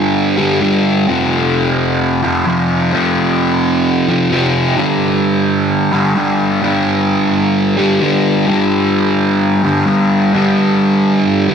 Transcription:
0.00 0.36 G2 medium
0.00 0.37 D3 medium
0.00 0.36 G3 medium
0.37 0.59 G2 medium
0.37 0.60 D3 medium
0.37 0.59 G3 medium
0.60 1.05 G2 medium
0.60 1.06 D3 medium
0.60 1.07 G3 medium
1.07 2.22 F2 medium
1.07 2.22 C3 medium
1.07 2.21 F3 loud
2.23 2.44 F2 medium
2.23 2.46 C3 medium
2.23 2.45 F3 medium
2.45 2.91 F2 medium
2.45 2.92 C3 medium
2.45 2.92 F3 medium
2.92 4.06 F2 medium
2.92 4.07 C3 medium
2.92 4.07 F3 loud
4.08 4.29 F2 medium
4.08 4.30 C3 medium
4.08 4.30 F3 medium
4.30 4.76 F2 medium
4.30 4.76 C3 medium
4.30 4.77 F3 medium
4.77 5.94 G2 medium
4.77 5.92 D3 medium
4.77 5.92 G3 loud
5.92 6.15 G2 medium
5.92 6.15 D3 medium
5.92 6.18 G3 medium
6.15 6.61 G2 medium
6.15 6.62 D3 medium
6.15 6.64 G3 medium
6.61 7.79 G2 medium
6.61 7.77 D3 medium
6.61 7.77 G3 loud
7.78 8.00 G2 medium
7.78 8.00 D3 medium
7.78 8.03 G3 medium
8.01 8.47 G2 medium
8.01 8.47 D3 medium
8.01 8.49 G3 medium
8.47 9.65 G2 medium
8.47 9.63 D3 loud
8.47 9.63 G3 loud
9.64 9.85 G2 medium
9.64 9.86 D3 medium
9.64 9.88 G3 medium
9.86 10.33 G2 medium
9.86 10.32 D3 medium
9.86 10.35 G3 medium
10.33 11.51 G2 medium
10.33 11.48 D3 medium
10.33 11.48 G3 medium
11.48 11.54 G2 medium
11.48 11.54 D3 medium
11.48 11.54 G3 medium

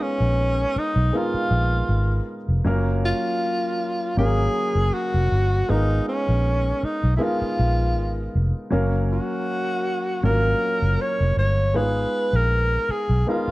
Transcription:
0.00 0.84 G#3 medium
0.00 0.84 B3 medium
0.00 0.80 C#4 medium
0.00 0.85 D#4 medium
0.00 0.85 F4 medium
0.00 0.85 A#4 medium
0.20 0.64 A#1 medium
0.76 1.19 D#4 medium
0.76 muted fingered electric bass stroke soft
0.96 1.10 B1 medium
1.13 2.35 G#3 medium
1.13 2.35 B3 medium
1.13 2.36 D#4 medium
1.13 2.36 F4 medium
1.13 2.36 A#4 medium
1.17 2.30 F4 medium
1.34 muted fingered electric bass stroke soft
1.51 1.81 A#1 medium
1.89 2.19 G#1 medium
2.48 2.62 F1 medium
2.65 3.11 F#1 medium
2.65 3.87 F#3 medium
2.65 3.87 A#3 medium
2.65 3.87 C#4 medium
2.65 3.88 F4 medium
2.65 3.88 A#4 medium
3.05 4.14 F4 loud
4.17 4.47 G#1 medium
4.17 5.39 F#3 medium
4.17 5.39 A#3 medium
4.17 5.39 C#4 medium
4.17 4.95 G#4 loud
4.17 5.40 A#4 medium
4.17 5.40 F5 medium
4.75 4.89 F#1 medium
4.94 5.71 F#4 medium
5.14 5.28 F1 medium
5.32 5.61 G1 medium
5.69 5.99 G#1 medium
5.69 6.90 G#3 medium
5.69 6.90 B3 medium
5.69 6.07 D#4 medium
5.69 6.91 D#4 medium
5.69 6.91 F4 medium
5.69 6.91 A#4 medium
6.08 6.86 C#4 medium
6.29 6.72 A#1 medium
6.83 7.15 D#4 medium
6.83 muted fingered electric bass stroke soft
7.04 7.17 B1 medium
7.16 8.41 G#3 medium
7.16 8.41 B3 medium
7.16 8.41 D#4 medium
7.16 7.25 E4 medium
7.20 8.42 F4 medium
7.20 8.36 F4 medium
7.20 8.42 A#4 medium
7.42 muted fingered electric bass stroke soft
7.59 7.98 A#1 medium
7.98 8.27 G#1 medium
8.35 8.51 F1 medium
8.71 9.18 F#1 medium
8.71 9.93 F#3 medium
8.71 9.93 A#3 medium
8.71 9.93 C#4 medium
8.71 9.94 A#4 medium
8.71 9.94 F5 medium
9.12 10.21 F#4 medium
10.23 10.53 G#1 medium
10.23 11.45 F#3 medium
10.23 11.45 A#3 medium
10.23 11.45 C#4 medium
10.23 11.46 F4 medium
10.23 11.03 A#4 medium
10.23 11.46 A#4 medium
10.82 10.96 F#1 medium
11.01 11.38 C#5 loud
11.21 11.34 F1 medium
11.37 11.75 G1 medium
11.37 11.78 C#5 medium
11.74 12.05 G#1 medium
11.74 12.96 G#3 medium
11.74 12.96 B3 medium
11.74 12.97 D#4 medium
11.74 12.97 F4 medium
11.74 12.97 G#4 medium
11.74 12.37 B4 loud
12.33 12.77 A#1 medium
12.33 12.93 A#4 medium
12.89 13.28 G#4 medium
12.89 muted fingered electric bass stroke soft
13.09 13.23 B1 medium
13.27 13.51 G#3 medium
13.27 13.51 B3 medium
13.27 13.51 D#4 medium
13.27 13.51 F4 medium
13.27 13.51 A#4 medium
13.48 muted fingered electric bass stroke soft

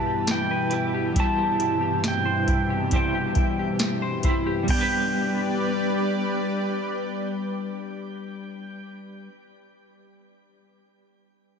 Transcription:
0.00 1.12 G2 medium
0.00 4.64 B2 medium
0.00 0.29 E3 medium
0.00 2.89 E3 medium
0.00 4.65 E3 medium
0.00 1.11 G3 medium
0.00 1.16 G3 loud
0.00 0.73 E4 medium
0.00 0.71 G4 medium
0.00 0.51 B4 medium
0.00 0.69 B4 medium
0.00 1.12 B4 loud
0.00 0.32 A5 loud
0.06 0.94 G4 medium
0.27 3.79 E3 medium
0.27 1.19 G5 loud
0.27 snare loud
0.27 closed hi-hat medium
0.27 tambourine medium
0.51 2.25 B4 medium
0.70 1.59 E4 medium
0.70 1.16 E4 medium
0.70 1.16 G4 medium
0.70 1.15 B4 medium
0.70 closed hi-hat medium
0.94 1.37 G4 medium
1.14 4.65 G2 medium
1.14 4.65 C3 medium
1.14 4.64 G3 loud
1.14 2.92 G3 medium
1.14 2.91 E4 medium
1.14 kick loud
1.14 closed hi-hat medium
1.18 2.93 G4 medium
1.18 2.93 C5 loud
1.18 2.08 A5 loud
1.37 1.80 G4 medium
1.60 2.46 E4 medium
1.60 closed hi-hat medium
1.81 2.70 G4 medium
2.04 snare loud
2.04 closed hi-hat medium
2.04 tambourine medium
2.08 2.95 G5 loud
2.25 4.01 C5 medium
2.47 3.36 E4 medium
2.47 kick medium
2.47 closed hi-hat medium
2.70 3.14 G4 medium
2.91 4.63 G3 medium
2.91 4.24 E4 medium
2.91 4.25 G4 medium
2.91 4.23 C5 medium
2.91 kick loud
2.91 closed hi-hat medium
2.96 4.22 G5 medium
3.15 3.59 G4 medium
3.35 4.24 E4 medium
3.35 kick loud
3.35 closed hi-hat medium
3.59 4.46 G4 medium
3.79 snare loud
3.79 closed hi-hat medium
3.79 tambourine medium
4.02 4.77 C5 medium
4.23 4.74 E4 medium
4.23 4.69 G4 medium
4.23 4.68 C5 medium
4.23 kick medium
4.23 closed hi-hat medium
4.27 4.70 E4 medium
4.46 4.78 G4 medium
4.63 9.27 G3 medium
4.63 9.28 G3 medium
4.68 8.97 G3 medium
4.68 9.33 B3 medium
4.68 8.98 G4 medium
4.68 8.97 B4 medium
4.68 8.98 D5 loud
4.68 8.98 G5 loud
4.68 kick loud
4.68 crash medium
4.73 9.36 D4 loud
4.73 9.38 D4 medium
4.73 9.40 G4 loud
4.78 9.42 G4 medium
4.78 9.44 B4 loud
4.83 9.47 B4 medium

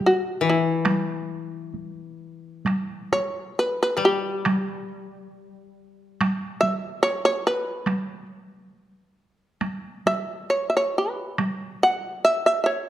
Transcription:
0.01 taiko high soft
0.06 0.43 F#4 medium
0.41 3.10 E3 medium
0.49 1.72 E4 medium
0.85 taiko rim medium
0.85 taiko high medium
1.74 taiko high soft
2.66 taiko rim medium
2.66 taiko high medium
3.12 3.54 C#5 medium
3.12 taiko high soft
3.59 3.79 B4 medium
3.83 3.95 B4 medium
3.97 6.59 G3 medium
3.97 4.02 B4 medium
4.05 4.88 G4 medium
4.46 taiko rim medium
4.46 taiko high medium
6.21 taiko rim medium
6.21 taiko high medium
6.61 7.00 E5 loud
6.61 taiko high soft
7.03 7.22 C#5 loud
7.25 7.44 C#5 loud
7.47 8.26 B4 medium
7.86 taiko rim medium
7.86 taiko high medium
9.61 taiko rim medium
9.61 taiko high medium
10.06 10.48 E5 loud
10.06 taiko high soft
10.50 10.66 C#5 medium
10.70 10.74 E5 medium
10.77 10.96 C#5 medium
10.98 11.37 B4 medium
11.38 taiko rim medium
11.38 taiko high medium
11.83 12.23 F#5 loud
12.25 12.45 E5 loud
12.46 12.61 E5 medium
12.64 12.89 C#5 medium
12.64 12.70 E5 medium

